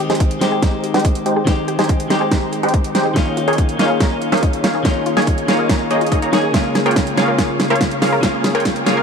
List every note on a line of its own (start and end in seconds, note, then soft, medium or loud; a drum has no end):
0.00 0.38 D#3 medium
0.00 0.39 G#3 medium
0.00 0.39 C4 medium
0.00 0.40 G4 loud
0.10 0.39 G#3 medium
0.10 0.39 D#4 medium
0.10 0.39 G4 medium
0.10 0.16 G#4 loud
0.10 0.39 C5 medium
0.10 0.39 G#5 medium
0.10 snare soft
0.10 closed hi-hat soft
0.15 closed hi-hat medium
0.20 0.26 D#4 medium
0.20 kick loud
0.20 closed hi-hat medium
0.31 closed hi-hat medium
0.39 1.43 D#3 medium
0.39 1.44 G#3 medium
0.39 0.60 G#3 medium
0.39 1.45 C4 medium
0.39 0.60 D#4 medium
0.39 0.60 G4 medium
0.39 0.48 G4 medium
0.39 1.45 G4 medium
0.39 0.60 C5 medium
0.39 0.60 G5 medium
0.39 snare medium
0.39 closed hi-hat medium
0.52 0.58 G#4 loud
0.62 0.92 G#3 medium
0.62 0.72 D#4 medium
0.62 0.92 D#4 medium
0.62 0.92 G4 medium
0.62 0.92 C5 medium
0.62 0.92 A#5 medium
0.62 kick loud
0.62 snare medium
0.62 closed hi-hat medium
0.84 0.90 G4 medium
0.84 closed hi-hat medium
0.94 1.23 G#3 medium
0.94 1.23 D#4 medium
0.94 1.23 G4 medium
0.94 1.00 G#4 loud
0.94 1.23 C5 medium
0.94 1.23 G5 medium
0.94 snare soft
0.94 closed hi-hat soft
0.99 closed hi-hat medium
1.05 1.14 D#4 medium
1.05 kick medium
1.05 closed hi-hat medium
1.15 closed hi-hat medium
1.26 1.44 G#3 medium
1.26 1.45 D#4 medium
1.26 1.32 G4 medium
1.26 1.45 G4 medium
1.26 1.45 C5 medium
1.26 1.45 G5 medium
1.26 closed hi-hat medium
1.36 1.43 G#4 loud
1.45 2.07 D#3 medium
1.45 2.07 G#3 medium
1.45 1.76 G#3 medium
1.45 2.08 C4 medium
1.45 1.56 D#4 medium
1.45 1.76 D#4 medium
1.45 1.76 G4 medium
1.45 1.76 C5 medium
1.45 1.76 G5 medium
1.45 kick loud
1.45 snare medium
1.45 closed hi-hat medium
1.49 2.09 G4 medium
1.68 1.77 G4 loud
1.68 closed hi-hat medium
1.79 2.08 G#3 medium
1.79 2.08 D#4 medium
1.79 2.08 G4 medium
1.79 1.85 G#4 loud
1.79 2.08 C5 medium
1.79 2.08 G#5 loud
1.79 snare soft
1.79 closed hi-hat soft
1.84 closed hi-hat medium
1.89 1.95 D#4 medium
1.89 kick loud
1.89 closed hi-hat medium
2.00 closed hi-hat medium
2.08 3.12 D#3 medium
2.08 3.13 G#3 medium
2.08 2.29 G#3 medium
2.08 3.14 C4 medium
2.08 2.29 D#4 medium
2.08 2.29 G4 medium
2.08 2.17 G4 medium
2.08 3.14 G4 medium
2.08 2.29 C5 medium
2.08 2.29 G5 loud
2.08 snare medium
2.08 closed hi-hat medium
2.21 2.27 G#4 loud
2.31 2.61 G#3 medium
2.31 2.61 D#4 medium
2.31 2.41 D#4 medium
2.31 2.61 G4 medium
2.31 2.61 C5 medium
2.31 2.61 A#5 medium
2.31 kick medium
2.31 snare medium
2.31 closed hi-hat medium
2.53 2.59 G4 medium
2.53 closed hi-hat medium
2.63 2.92 G#3 medium
2.63 2.92 D#4 medium
2.63 2.92 G4 medium
2.63 2.69 G#4 loud
2.63 2.92 C5 medium
2.63 2.92 G5 medium
2.63 closed hi-hat soft
2.69 closed hi-hat medium
2.74 2.83 D#4 medium
2.74 kick loud
2.74 closed hi-hat medium
2.84 closed hi-hat medium
2.95 3.13 G#3 medium
2.95 3.13 D#4 medium
2.95 3.13 G4 medium
2.95 3.01 G4 medium
2.95 3.13 C5 medium
2.95 3.13 G5 medium
2.95 snare medium
2.95 closed hi-hat medium
3.06 3.12 G#4 loud
3.14 3.76 D#3 medium
3.14 3.77 A#3 medium
3.14 3.45 A#3 medium
3.14 3.77 C#4 medium
3.14 3.25 D#4 medium
3.14 3.45 D#4 medium
3.14 3.45 G#4 medium
3.14 3.45 C#5 medium
3.14 3.45 F5 medium
3.14 kick loud
3.14 snare medium
3.14 closed hi-hat medium
3.18 3.78 F4 loud
3.37 3.46 F4 loud
3.37 closed hi-hat medium
3.48 3.77 A#3 medium
3.48 3.77 D#4 medium
3.48 3.77 G#4 medium
3.48 3.54 G#4 loud
3.48 3.77 C#5 medium
3.48 3.77 G#5 medium
3.48 closed hi-hat soft
3.53 closed hi-hat medium
3.58 3.64 D#4 medium
3.58 kick medium
3.58 closed hi-hat medium
3.69 closed hi-hat medium
3.77 4.81 D#3 medium
3.77 4.82 A#3 medium
3.77 3.98 A#3 medium
3.77 4.83 C#4 medium
3.77 3.98 D#4 medium
3.77 3.86 F4 medium
3.77 3.98 G#4 medium
3.77 3.98 C#5 medium
3.77 3.98 F5 loud
3.77 snare medium
3.77 closed hi-hat medium
3.81 4.83 F4 medium
3.90 3.96 G#4 loud
4.00 4.30 A#3 medium
4.00 4.30 D#4 medium
4.00 4.10 D#4 medium
4.00 4.30 G#4 medium
4.00 4.30 C#5 medium
4.00 4.30 A#5 medium
4.00 kick loud
4.00 snare medium
4.00 closed hi-hat medium
4.22 4.28 F4 medium
4.22 closed hi-hat medium
4.32 4.61 A#3 medium
4.32 4.61 D#4 medium
4.32 4.61 G#4 medium
4.32 4.38 G#4 loud
4.32 4.61 C#5 medium
4.32 4.61 F5 medium
4.32 snare medium
4.32 closed hi-hat soft
4.37 closed hi-hat medium
4.43 4.52 D#4 medium
4.43 kick medium
4.43 closed hi-hat medium
4.53 closed hi-hat medium
4.64 4.82 A#3 medium
4.64 4.82 D#4 medium
4.64 4.70 F4 medium
4.64 4.82 G#4 medium
4.64 4.82 C#5 medium
4.64 4.82 F5 medium
4.64 snare medium
4.64 closed hi-hat medium
4.75 4.81 G#4 loud
4.83 5.45 D#3 medium
4.83 5.46 A#3 medium
4.83 5.14 A#3 medium
4.83 5.46 C#4 medium
4.83 5.14 D#4 medium
4.83 4.94 D#4 medium
4.83 5.14 G#4 medium
4.83 5.14 C#5 medium
4.83 5.14 F5 medium
4.83 kick medium
4.83 snare medium
4.83 closed hi-hat medium
4.87 5.47 F4 loud
5.06 5.15 F4 loud
5.06 closed hi-hat medium
5.17 5.46 A#3 medium
5.17 5.46 D#4 medium
5.17 5.23 G#4 loud
5.17 5.46 G#4 medium
5.17 5.46 C#5 medium
5.17 5.46 G#5 medium
5.17 snare medium
5.17 closed hi-hat soft
5.22 closed hi-hat medium
5.27 5.33 D#4 medium
5.27 kick loud
5.27 closed hi-hat medium
5.38 closed hi-hat medium
5.46 6.30 D#3 medium
5.46 6.30 A#3 medium
5.46 5.67 A#3 medium
5.46 6.31 C#4 medium
5.46 5.67 D#4 medium
5.46 5.55 F4 medium
5.46 6.32 F4 medium
5.46 5.67 G#4 medium
5.46 5.67 C#5 medium
5.46 5.67 F5 loud
5.46 snare medium
5.46 closed hi-hat medium
5.59 5.65 G#4 loud
5.69 5.89 A#3 medium
5.69 5.79 D#4 medium
5.69 5.89 D#4 medium
5.69 5.89 G#4 medium
5.69 5.89 C#5 medium
5.69 5.89 A#5 medium
5.69 kick medium
5.69 snare medium
5.69 closed hi-hat medium
5.91 6.09 A#3 medium
5.91 6.09 D#4 medium
5.91 5.94 G#4 medium
5.91 6.09 G#4 medium
5.91 6.09 C#5 medium
5.91 6.09 D#5 loud
5.91 closed hi-hat medium
6.01 6.07 F4 medium
6.01 closed hi-hat soft
6.07 closed hi-hat medium
6.12 6.20 A#3 medium
6.12 6.15 D#4 loud
6.12 6.20 D#4 medium
6.12 6.20 G#4 medium
6.12 6.20 C#5 medium
6.12 6.20 D#5 loud
6.12 kick loud
6.12 closed hi-hat medium
6.22 6.30 A#3 medium
6.22 6.30 D#4 medium
6.22 6.30 G#4 medium
6.22 6.30 C#5 medium
6.22 6.30 A#5 loud
6.22 closed hi-hat medium
6.32 6.51 D#3 medium
6.32 6.51 A#3 medium
6.32 6.52 A#3 medium
6.32 6.52 C#4 medium
6.32 6.37 D#4 medium
6.32 6.52 D#4 medium
6.32 6.52 G#4 medium
6.32 6.52 C#5 medium
6.32 6.52 G#5 loud
6.32 snare medium
6.32 closed hi-hat medium
6.44 6.47 G#4 medium
6.52 7.14 C#3 medium
6.52 7.14 G#3 medium
6.52 6.83 A#3 medium
6.52 7.15 A#3 medium
6.52 6.63 F4 medium
6.52 6.83 F4 medium
6.52 6.83 G#4 medium
6.52 6.83 C#5 medium
6.52 6.83 F5 medium
6.52 kick loud
6.52 snare medium
6.52 closed hi-hat medium
6.52 riser medium
6.56 7.16 F4 loud
6.75 6.84 G#4 loud
6.75 snare medium
6.75 closed hi-hat medium
6.86 7.15 A#3 medium
6.86 7.15 F4 medium
6.86 7.15 G#4 medium
6.86 6.92 A#4 loud
6.86 7.15 C#5 medium
6.86 7.15 G5 medium
6.86 closed hi-hat soft
6.91 closed hi-hat medium
6.96 7.02 F4 medium
6.96 kick loud
6.96 snare medium
6.96 closed hi-hat medium
7.07 closed hi-hat medium
7.15 8.19 C#3 medium
7.15 8.20 G#3 medium
7.15 7.36 A#3 medium
7.15 8.21 A#3 medium
7.15 7.36 F4 medium
7.15 7.24 G#4 medium
7.15 7.36 G#4 medium
7.15 7.36 C#5 medium
7.15 7.36 F5 loud
7.15 snare medium
7.15 closed hi-hat medium
7.19 8.21 F4 medium
7.28 7.34 A#4 loud
7.38 7.68 A#3 medium
7.38 7.48 F4 medium
7.38 7.68 F4 medium
7.38 7.68 G#4 medium
7.38 7.68 C#5 medium
7.38 7.68 G#5 medium
7.38 kick loud
7.38 snare medium
7.38 closed hi-hat medium
7.60 7.66 G#4 medium
7.60 snare medium
7.60 closed hi-hat medium
7.70 7.99 A#3 medium
7.70 7.99 F4 medium
7.70 7.99 G#4 medium
7.70 7.76 A#4 loud
7.70 7.99 C#5 medium
7.70 7.99 F5 medium
7.70 closed hi-hat soft
7.76 closed hi-hat medium
7.81 7.90 F4 medium
7.81 kick loud
7.81 snare medium
7.81 closed hi-hat medium
7.91 closed hi-hat medium
8.02 8.21 A#3 medium
8.02 8.21 F4 medium
8.02 8.08 G#4 medium
8.02 8.21 G#4 medium
8.02 8.21 C#5 medium
8.02 8.21 F5 medium
8.02 snare medium
8.02 open hi-hat medium
8.12 8.19 A#4 loud
8.21 8.83 C#3 medium
8.21 8.84 G#3 medium
8.21 8.52 A#3 medium
8.21 8.84 A#3 medium
8.21 8.32 F4 medium
8.21 8.52 F4 medium
8.21 8.85 F4 loud
8.21 8.52 G#4 medium
8.21 8.52 C#5 medium
8.21 8.52 F5 medium
8.21 kick loud
8.21 snare medium
8.21 closed hi-hat medium
8.44 8.53 G#4 loud
8.44 snare medium
8.44 closed hi-hat medium
8.55 8.84 A#3 medium
8.55 8.84 F4 medium
8.55 8.84 G#4 medium
8.55 8.61 A#4 loud
8.55 8.84 C#5 medium
8.55 8.84 G5 medium
8.55 closed hi-hat soft
8.60 closed hi-hat medium
8.65 8.71 F4 medium
8.65 kick loud
8.65 snare medium
8.65 closed hi-hat medium
8.76 closed hi-hat medium
8.84 9.03 C#3 medium
8.84 9.03 G#3 medium
8.84 9.03 A#3 medium
8.84 9.03 F4 medium
8.84 8.93 G#4 medium
8.84 9.03 G#4 medium
8.84 9.03 C#5 medium
8.84 9.03 F5 loud
8.84 snare medium
8.84 closed hi-hat medium
8.88 9.03 F4 medium
8.97 9.03 A#4 loud